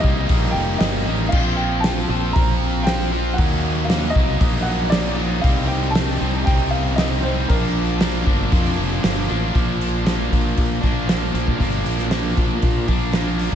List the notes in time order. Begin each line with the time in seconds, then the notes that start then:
0.00 C2 G3 D#5, kick
0.04 A#3 D#4
0.28 A#1 G3 A#3 D#4, kick, open hi-hat
0.51 F1 G5
0.78 G1 G3 A#3 D#4 D#5, snare, open hi-hat
1.06 A1 G3 A#3 D#4
1.29 F3 F5, crash
1.33 A#1 C4 F4, kick
1.56 G5
1.80 A5, snare, open hi-hat
1.85 F3 C4 F4
2.09 A#1 F3 C4 F4
2.33 A#1 F3 C4 A#5, kick, open hi-hat
2.37 F4
2.83 F3 C4 G5, snare, open hi-hat
2.88 F4
3.12 F3 C4 F4
3.34 F#5
3.38 D#2 F#3 A#3 D#4, kick, open hi-hat
3.85 F5
3.90 F#3 A#3 D#4, snare, open hi-hat
4.10 D#5
4.15 C2 F#3 A#3 D#4, kick
4.40 A#1 F#3 A#3 D#4, kick, open hi-hat
4.62 F#5
4.90 F#3 A#3 D#4 D5, snare, open hi-hat
5.18 F#3 A#3 D#4
5.41 C2 G3 C4 D#4 F5, kick, open hi-hat
5.66 G5
5.91 G3 A5
5.95 C4 D#4, snare, open hi-hat
6.20 C2 G3 C4 D#4
6.44 C2 G3 C4 D#4 G5, kick, open hi-hat
6.70 F5
6.96 G3 C4 D#4 D#5, snare, open hi-hat
7.21 G3 C5
7.25 C4 D#4
7.48 A#1 F3 A#3 D4 A#4, kick, open hi-hat
8.01 F3 A#3 D4, snare, open hi-hat
8.26 G1 F3 A#3 D4, kick
8.52 F2 F3 A#3 D4, kick, open hi-hat
8.79 F1
9.04 G1 F3 A#3 D4, snare, open hi-hat
9.29 A1 F3 A#3 D4
9.53 A#1 F3 A#3 D4, kick, open hi-hat
9.81 open hi-hat
10.05 F3 A#3 D4, snare, open hi-hat
10.32 A#1, kick, open hi-hat
10.58 A#1, kick, open hi-hat
10.81 A#1 A#3 D4, kick, open hi-hat
11.07 F3 A#3 D4, snare, open hi-hat
11.33 A#1 A#3 D4, open hi-hat
11.47 A#2, kick
11.58 G1 F3 A#3 D4, kick, open hi-hat
11.84 A#1, open hi-hat
11.98 snare
12.11 F3 A#3 D4, snare, open hi-hat
12.37 A#2, kick, open hi-hat
12.62 A#2, kick, open hi-hat
12.88 A#1 A#3 D4, kick, open hi-hat
13.13 F3 A#3 D4, snare, open hi-hat
13.38 A#3 D4, open hi-hat